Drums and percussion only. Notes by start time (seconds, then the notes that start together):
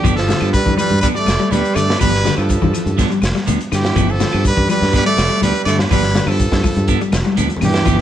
0.04 kick, closed hi-hat, high conga, low conga, claves, shekere
0.18 snare, shekere
0.29 snare, closed hi-hat, high conga, shekere
0.41 claves, shekere
0.53 kick, closed hi-hat, high conga, shekere
0.66 kick, low conga, shekere
0.77 closed hi-hat, high conga, claves, shekere
0.90 high conga, low conga, shekere
1.02 kick, closed hi-hat, high conga, shekere
1.16 shekere
1.26 snare, closed hi-hat, high conga, claves, shekere
1.40 shekere
1.51 closed hi-hat, high conga, shekere
1.65 closed hi-hat, shekere
1.76 closed hi-hat, claves, shekere
1.90 snare, shekere
2.00 kick, closed hi-hat, high conga, low conga, claves, shekere
2.14 snare, closed hi-hat, shekere
2.24 snare, closed hi-hat, high conga, shekere
2.38 claves, shekere
2.49 kick, closed hi-hat, high conga, shekere
2.62 kick, low conga, shekere
2.74 closed hi-hat, claves, shekere
2.86 closed hi-hat, high conga, low conga, shekere
2.98 kick, snare, closed hi-hat, high conga, shekere
3.11 closed hi-hat, shekere
3.22 snare, closed hi-hat, high conga, claves, shekere
3.35 snare, shekere
3.47 closed hi-hat, high conga, shekere
3.60 closed hi-hat, shekere
3.72 snare, closed hi-hat, claves, shekere
3.84 snare, closed hi-hat, shekere
3.96 kick, closed hi-hat, high conga, low conga, claves, shekere
4.09 shekere
4.20 snare, closed hi-hat, high conga, shekere
4.33 claves, shekere
4.45 kick, closed hi-hat, high conga, shekere
4.57 kick, low conga, shekere
4.69 closed hi-hat, high conga, claves, shekere
4.81 snare, high conga, low conga, shekere
4.93 kick, snare, closed hi-hat, high conga, shekere
5.06 shekere
5.17 snare, closed hi-hat, high conga, claves, shekere
5.30 shekere
5.41 closed hi-hat, high conga, shekere
5.55 closed hi-hat, shekere
5.66 snare, closed hi-hat, claves, shekere
5.79 snare, high conga, shekere
5.91 kick, closed hi-hat, high conga, low conga, claves, shekere
6.03 snare, closed hi-hat, shekere
6.15 snare, closed hi-hat, high conga, shekere
6.27 claves, shekere
6.39 kick, closed hi-hat, high conga, shekere
6.52 kick, snare, low conga, shekere
6.63 kick, open hi-hat, high conga, claves, shekere
6.76 closed hi-hat, high conga, low conga, shekere
6.88 kick, closed hi-hat, high conga, shekere
7.01 closed hi-hat, shekere
7.12 snare, closed hi-hat, high conga, claves, shekere
7.25 high conga, shekere
7.33 high conga
7.37 closed hi-hat, high conga, shekere
7.48 closed hi-hat, low conga, shekere
7.56 low conga
7.61 open hi-hat, low conga, claves, shekere
7.74 snare, closed hi-hat, shekere
7.81 low conga
7.85 kick, closed hi-hat, high conga, low conga, claves, shekere